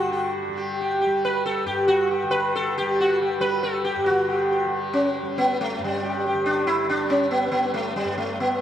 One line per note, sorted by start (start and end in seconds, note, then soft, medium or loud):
0.00 1.65 G2 medium
0.00 2.23 D3 medium
0.00 0.49 G3 medium
0.00 0.30 F#4 medium
0.00 0.11 G4 soft
0.12 0.32 G4 soft
0.49 1.06 G3 medium
0.57 0.77 G4 soft
0.81 1.00 G4 soft
1.01 1.21 G4 soft
1.06 2.81 G3 medium
1.25 1.44 B4 medium
1.46 1.66 A4 medium
1.65 3.95 G2 medium
1.65 1.87 G4 medium
1.88 2.08 F#4 medium
2.11 2.30 G4 soft
2.23 4.09 D3 medium
2.31 2.54 B4 medium
2.55 2.77 A4 medium
2.78 3.39 G3 medium
2.78 2.99 G4 medium
3.01 3.20 F#4 medium
3.22 3.41 G4 soft
3.39 4.66 G3 medium
3.39 3.63 B4 medium
3.63 3.84 A4 medium
3.84 4.07 G4 medium
3.96 5.78 G2 medium
4.06 6.34 D3 medium
4.06 4.68 F#4 medium
4.28 4.49 G4 soft
4.51 4.71 G4 soft
4.66 5.22 G3 medium
4.93 5.38 C#4 medium
5.22 6.90 G3 medium
5.38 5.60 B3 medium
5.61 5.83 A3 medium
5.79 8.04 G2 medium
5.84 6.23 G3 medium
6.05 6.24 G4 soft
6.26 6.46 G4 soft
6.34 8.61 D3 medium
6.46 6.66 D4 medium
6.67 6.89 E4 medium
6.89 7.48 G3 medium
6.89 7.12 D4 medium
7.10 7.30 C#4 medium
7.31 7.50 B3 medium
7.48 8.61 G3 medium
7.48 7.74 B3 medium
7.74 7.96 A3 medium
7.96 8.17 G3 medium
8.04 8.61 G2 medium
8.18 8.40 A3 medium
8.40 8.61 B3 medium